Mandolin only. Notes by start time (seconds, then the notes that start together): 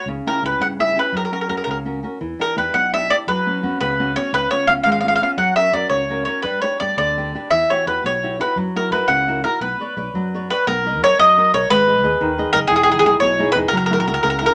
0.27 A#4
0.46 B4
0.62 F#5
0.80 E5
0.99 B4
1.17 A#4
1.25 A#4
1.33 A#4
1.41 A#4
1.49 A#4
1.57 A#4
1.64 A#4
1.71 A#4
2.41 A#4
2.58 B4
2.74 F#5
2.94 E5
3.10 D5
3.28 B4
3.81 B4
4.16 C#5
4.34 B4
4.51 C#5
4.67 F5
4.83 F5
4.92 F5
5.01 F5
5.08 F5
5.16 F5
5.23 F5
5.38 F#5
5.56 E5
5.73 D5
5.90 C#5
6.25 C#5
6.42 B4
6.62 C#5
6.80 D5
6.98 D5
7.51 E5
7.70 C#5
7.87 B4
8.06 C#5
8.41 B4
8.77 A#4
8.92 B4
9.08 F#5
9.44 A#4
9.61 B4
10.50 B4
10.67 A#4
11.04 C#5
11.19 D#5
11.54 C#5
11.70 B4
12.53 A#4
12.67 G#4
12.76 G#4
12.83 G#4
12.92 G#4
12.99 G#4
13.06 G#4
13.20 C#5
13.52 B4
13.68 A#4
13.77 A#4
13.86 A#4
13.93 A#4
14.00 A#4
14.08 A#4
14.14 A#4
14.23 A#4
14.30 A#4
14.39 A#4
14.46 A#4